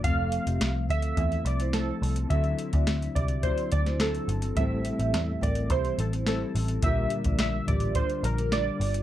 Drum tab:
HH |x-xxx-xxxxxxx-ox|xxxxxxxxxxxxxxxx|x-xxx-xxxxxxx-ox|x-xxx-xxxxxxx-ox|
SD |----o-------o---|----o------oo---|----o-------o---|----o-------o---|
BD |o-----o-o-------|o--o--o-o-o-----|o-----o-o-------|o--o--o-o-------|